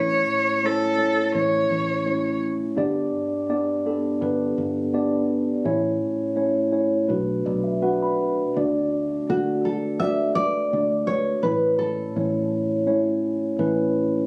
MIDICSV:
0, 0, Header, 1, 5, 480
1, 0, Start_track
1, 0, Key_signature, 2, "major"
1, 0, Tempo, 717703
1, 1858, Time_signature, 4, 2, 24, 8
1, 4262, Tempo, 727273
1, 7142, Tempo, 714286
1, 9514, End_track
2, 0, Start_track
2, 0, Title_t, "Cello"
2, 0, Program_c, 0, 42
2, 0, Note_on_c, 0, 73, 85
2, 439, Note_on_c, 0, 69, 80
2, 449, Note_off_c, 0, 73, 0
2, 906, Note_off_c, 0, 69, 0
2, 910, Note_on_c, 0, 73, 67
2, 1597, Note_off_c, 0, 73, 0
2, 9514, End_track
3, 0, Start_track
3, 0, Title_t, "Nylon-string guitar"
3, 0, Program_c, 1, 24
3, 6192, Note_on_c, 1, 66, 66
3, 6425, Note_on_c, 1, 69, 59
3, 6436, Note_off_c, 1, 66, 0
3, 6647, Note_off_c, 1, 69, 0
3, 6653, Note_on_c, 1, 76, 75
3, 6886, Note_off_c, 1, 76, 0
3, 6889, Note_on_c, 1, 74, 83
3, 7364, Note_off_c, 1, 74, 0
3, 7367, Note_on_c, 1, 73, 68
3, 7607, Note_on_c, 1, 71, 72
3, 7622, Note_off_c, 1, 73, 0
3, 7845, Note_off_c, 1, 71, 0
3, 7848, Note_on_c, 1, 69, 67
3, 8309, Note_off_c, 1, 69, 0
3, 9514, End_track
4, 0, Start_track
4, 0, Title_t, "Tine electric piano"
4, 0, Program_c, 2, 4
4, 0, Note_on_c, 2, 33, 45
4, 0, Note_on_c, 2, 45, 47
4, 0, Note_on_c, 2, 57, 67
4, 0, Note_on_c, 2, 61, 60
4, 0, Note_on_c, 2, 64, 62
4, 0, Note_on_c, 2, 73, 81
4, 55, Control_c, 2, 64, 127
4, 258, Note_off_c, 2, 57, 0
4, 260, Note_off_c, 2, 61, 0
4, 261, Note_off_c, 2, 64, 0
4, 261, Note_off_c, 2, 73, 0
4, 424, Note_on_c, 2, 57, 51
4, 424, Note_on_c, 2, 61, 51
4, 426, Note_on_c, 2, 64, 47
4, 431, Note_on_c, 2, 73, 62
4, 580, Note_off_c, 2, 57, 0
4, 581, Note_off_c, 2, 61, 0
4, 582, Note_off_c, 2, 64, 0
4, 584, Note_off_c, 2, 73, 0
4, 654, Note_on_c, 2, 57, 45
4, 655, Note_on_c, 2, 61, 46
4, 659, Note_on_c, 2, 64, 45
4, 661, Note_on_c, 2, 73, 56
4, 815, Note_off_c, 2, 57, 0
4, 816, Note_off_c, 2, 61, 0
4, 817, Note_off_c, 2, 64, 0
4, 818, Note_off_c, 2, 73, 0
4, 898, Note_on_c, 2, 57, 54
4, 902, Note_on_c, 2, 61, 47
4, 902, Note_on_c, 2, 64, 49
4, 903, Note_on_c, 2, 73, 56
4, 1215, Note_off_c, 2, 57, 0
4, 1217, Note_off_c, 2, 61, 0
4, 1217, Note_off_c, 2, 64, 0
4, 1217, Note_off_c, 2, 73, 0
4, 1376, Note_on_c, 2, 57, 57
4, 1377, Note_on_c, 2, 64, 55
4, 1378, Note_on_c, 2, 61, 48
4, 1380, Note_on_c, 2, 73, 63
4, 1694, Note_off_c, 2, 57, 0
4, 1695, Note_off_c, 2, 61, 0
4, 1695, Note_off_c, 2, 64, 0
4, 1696, Note_off_c, 2, 73, 0
4, 1833, Note_off_c, 2, 45, 0
4, 1834, Note_off_c, 2, 33, 0
4, 1851, Note_on_c, 2, 59, 79
4, 1851, Note_on_c, 2, 62, 83
4, 1853, Note_on_c, 2, 43, 59
4, 1855, Note_on_c, 2, 67, 81
4, 1856, Note_on_c, 2, 31, 64
4, 1858, Note_on_c, 2, 74, 95
4, 1867, Control_c, 2, 64, 0
4, 1995, Control_c, 2, 64, 127
4, 2172, Note_off_c, 2, 59, 0
4, 2172, Note_off_c, 2, 62, 0
4, 2173, Note_off_c, 2, 67, 0
4, 2175, Note_off_c, 2, 74, 0
4, 2337, Note_on_c, 2, 62, 62
4, 2338, Note_on_c, 2, 59, 68
4, 2340, Note_on_c, 2, 74, 76
4, 2341, Note_on_c, 2, 67, 61
4, 2496, Note_off_c, 2, 62, 0
4, 2497, Note_off_c, 2, 59, 0
4, 2498, Note_off_c, 2, 67, 0
4, 2498, Note_off_c, 2, 74, 0
4, 2580, Note_on_c, 2, 59, 66
4, 2583, Note_on_c, 2, 62, 57
4, 2585, Note_on_c, 2, 67, 62
4, 2586, Note_on_c, 2, 69, 68
4, 2738, Note_off_c, 2, 59, 0
4, 2739, Note_off_c, 2, 62, 0
4, 2740, Note_off_c, 2, 67, 0
4, 2741, Note_off_c, 2, 69, 0
4, 2815, Note_on_c, 2, 59, 71
4, 2819, Note_on_c, 2, 62, 62
4, 2820, Note_on_c, 2, 67, 56
4, 2820, Note_on_c, 2, 71, 67
4, 3133, Note_off_c, 2, 59, 0
4, 3135, Note_off_c, 2, 62, 0
4, 3136, Note_off_c, 2, 67, 0
4, 3136, Note_off_c, 2, 71, 0
4, 3302, Note_on_c, 2, 59, 72
4, 3304, Note_on_c, 2, 62, 70
4, 3305, Note_on_c, 2, 67, 64
4, 3307, Note_on_c, 2, 74, 77
4, 3618, Note_off_c, 2, 59, 0
4, 3619, Note_off_c, 2, 62, 0
4, 3620, Note_off_c, 2, 67, 0
4, 3621, Note_off_c, 2, 74, 0
4, 3750, Note_off_c, 2, 43, 0
4, 3751, Note_off_c, 2, 31, 0
4, 3776, Note_on_c, 2, 57, 83
4, 3779, Note_on_c, 2, 45, 55
4, 3781, Note_on_c, 2, 61, 79
4, 3782, Note_on_c, 2, 64, 80
4, 3783, Note_on_c, 2, 33, 61
4, 3784, Note_on_c, 2, 73, 99
4, 3787, Control_c, 2, 64, 0
4, 3893, Control_c, 2, 64, 127
4, 4095, Note_off_c, 2, 57, 0
4, 4097, Note_off_c, 2, 61, 0
4, 4098, Note_off_c, 2, 64, 0
4, 4099, Note_off_c, 2, 73, 0
4, 4252, Note_on_c, 2, 57, 66
4, 4253, Note_on_c, 2, 61, 57
4, 4257, Note_on_c, 2, 64, 59
4, 4259, Note_on_c, 2, 73, 73
4, 4413, Note_off_c, 2, 57, 0
4, 4414, Note_off_c, 2, 61, 0
4, 4416, Note_off_c, 2, 64, 0
4, 4417, Note_off_c, 2, 73, 0
4, 4490, Note_on_c, 2, 57, 60
4, 4492, Note_on_c, 2, 61, 55
4, 4494, Note_on_c, 2, 64, 56
4, 4496, Note_on_c, 2, 73, 67
4, 4652, Note_off_c, 2, 57, 0
4, 4653, Note_off_c, 2, 61, 0
4, 4654, Note_off_c, 2, 64, 0
4, 4656, Note_off_c, 2, 73, 0
4, 4712, Note_off_c, 2, 45, 0
4, 4713, Note_off_c, 2, 33, 0
4, 4729, Note_on_c, 2, 57, 59
4, 4730, Note_on_c, 2, 47, 54
4, 4730, Note_on_c, 2, 62, 54
4, 4732, Note_on_c, 2, 66, 57
4, 4733, Note_on_c, 2, 35, 55
4, 4733, Note_on_c, 2, 71, 65
4, 4745, Control_c, 2, 64, 0
4, 4852, Control_c, 2, 64, 127
4, 4979, Note_on_c, 2, 74, 47
4, 5054, Note_off_c, 2, 57, 0
4, 5054, Note_off_c, 2, 62, 0
4, 5055, Note_off_c, 2, 66, 0
4, 5055, Note_off_c, 2, 71, 0
4, 5092, Note_off_c, 2, 74, 0
4, 5098, Note_on_c, 2, 76, 49
4, 5213, Note_off_c, 2, 76, 0
4, 5218, Note_on_c, 2, 57, 65
4, 5219, Note_on_c, 2, 62, 59
4, 5221, Note_on_c, 2, 66, 63
4, 5221, Note_on_c, 2, 78, 53
4, 5222, Note_on_c, 2, 71, 67
4, 5336, Note_off_c, 2, 78, 0
4, 5352, Note_on_c, 2, 83, 54
4, 5541, Note_off_c, 2, 57, 0
4, 5542, Note_off_c, 2, 62, 0
4, 5543, Note_off_c, 2, 66, 0
4, 5543, Note_off_c, 2, 71, 0
4, 5677, Note_off_c, 2, 47, 0
4, 5678, Note_off_c, 2, 35, 0
4, 5685, Note_off_c, 2, 83, 0
4, 5707, Note_on_c, 2, 57, 69
4, 5710, Note_on_c, 2, 38, 53
4, 5711, Note_on_c, 2, 50, 54
4, 5712, Note_on_c, 2, 62, 57
4, 5712, Note_on_c, 2, 66, 56
4, 5712, Note_on_c, 2, 74, 74
4, 5716, Control_c, 2, 64, 0
4, 5811, Control_c, 2, 64, 127
4, 6023, Note_off_c, 2, 57, 0
4, 6026, Note_off_c, 2, 62, 0
4, 6026, Note_off_c, 2, 66, 0
4, 6026, Note_off_c, 2, 74, 0
4, 6182, Note_on_c, 2, 57, 51
4, 6183, Note_on_c, 2, 62, 52
4, 6188, Note_on_c, 2, 66, 46
4, 6191, Note_on_c, 2, 69, 55
4, 6501, Note_off_c, 2, 57, 0
4, 6501, Note_off_c, 2, 62, 0
4, 6503, Note_off_c, 2, 66, 0
4, 6505, Note_off_c, 2, 69, 0
4, 6660, Note_on_c, 2, 57, 49
4, 6662, Note_on_c, 2, 66, 51
4, 6663, Note_on_c, 2, 62, 45
4, 6665, Note_on_c, 2, 74, 62
4, 6976, Note_off_c, 2, 57, 0
4, 6977, Note_off_c, 2, 66, 0
4, 6978, Note_off_c, 2, 62, 0
4, 6979, Note_off_c, 2, 74, 0
4, 7136, Note_on_c, 2, 57, 55
4, 7139, Note_on_c, 2, 66, 51
4, 7140, Note_on_c, 2, 62, 51
4, 7143, Note_on_c, 2, 74, 63
4, 7456, Note_off_c, 2, 57, 0
4, 7458, Note_off_c, 2, 62, 0
4, 7458, Note_off_c, 2, 66, 0
4, 7460, Note_off_c, 2, 74, 0
4, 7596, Note_off_c, 2, 38, 0
4, 7597, Note_off_c, 2, 50, 0
4, 7612, Note_on_c, 2, 57, 54
4, 7616, Note_on_c, 2, 61, 54
4, 7617, Note_on_c, 2, 45, 51
4, 7618, Note_on_c, 2, 33, 49
4, 7618, Note_on_c, 2, 64, 51
4, 7620, Note_on_c, 2, 73, 58
4, 7631, Control_c, 2, 64, 0
4, 7738, Control_c, 2, 64, 127
4, 7935, Note_off_c, 2, 57, 0
4, 7937, Note_off_c, 2, 61, 0
4, 7938, Note_off_c, 2, 64, 0
4, 7939, Note_off_c, 2, 73, 0
4, 8098, Note_on_c, 2, 57, 55
4, 8100, Note_on_c, 2, 61, 50
4, 8102, Note_on_c, 2, 73, 64
4, 8104, Note_on_c, 2, 64, 49
4, 8418, Note_off_c, 2, 57, 0
4, 8419, Note_off_c, 2, 61, 0
4, 8420, Note_off_c, 2, 73, 0
4, 8421, Note_off_c, 2, 64, 0
4, 8573, Note_on_c, 2, 57, 68
4, 8574, Note_on_c, 2, 61, 60
4, 8577, Note_on_c, 2, 64, 58
4, 8579, Note_on_c, 2, 73, 72
4, 8894, Note_off_c, 2, 57, 0
4, 8894, Note_off_c, 2, 61, 0
4, 8896, Note_off_c, 2, 64, 0
4, 8897, Note_off_c, 2, 73, 0
4, 9059, Note_on_c, 2, 57, 72
4, 9062, Note_on_c, 2, 61, 61
4, 9062, Note_on_c, 2, 64, 63
4, 9063, Note_on_c, 2, 71, 81
4, 9376, Note_off_c, 2, 57, 0
4, 9377, Note_off_c, 2, 61, 0
4, 9377, Note_off_c, 2, 64, 0
4, 9377, Note_off_c, 2, 71, 0
4, 9509, Note_off_c, 2, 33, 0
4, 9509, Note_off_c, 2, 45, 0
4, 9514, End_track
5, 0, Start_track
5, 0, Title_t, "Fingered electric bass"
5, 0, Program_c, 3, 33
5, 0, Note_on_c, 3, 33, 65
5, 152, Note_off_c, 3, 33, 0
5, 902, Note_on_c, 3, 33, 62
5, 1110, Note_off_c, 3, 33, 0
5, 1140, Note_on_c, 3, 33, 69
5, 1768, Note_off_c, 3, 33, 0
5, 1857, Note_on_c, 3, 31, 60
5, 2067, Note_off_c, 3, 31, 0
5, 2822, Note_on_c, 3, 31, 73
5, 3029, Note_off_c, 3, 31, 0
5, 3062, Note_on_c, 3, 31, 70
5, 3690, Note_off_c, 3, 31, 0
5, 3781, Note_on_c, 3, 33, 64
5, 3990, Note_off_c, 3, 33, 0
5, 4740, Note_on_c, 3, 35, 65
5, 4951, Note_off_c, 3, 35, 0
5, 4980, Note_on_c, 3, 35, 70
5, 5615, Note_off_c, 3, 35, 0
5, 5710, Note_on_c, 3, 38, 63
5, 6127, Note_off_c, 3, 38, 0
5, 6192, Note_on_c, 3, 38, 70
5, 7022, Note_off_c, 3, 38, 0
5, 7139, Note_on_c, 3, 38, 63
5, 7560, Note_off_c, 3, 38, 0
5, 7620, Note_on_c, 3, 33, 70
5, 8042, Note_off_c, 3, 33, 0
5, 8101, Note_on_c, 3, 33, 68
5, 8939, Note_off_c, 3, 33, 0
5, 9060, Note_on_c, 3, 33, 71
5, 9477, Note_off_c, 3, 33, 0
5, 9514, End_track
0, 0, End_of_file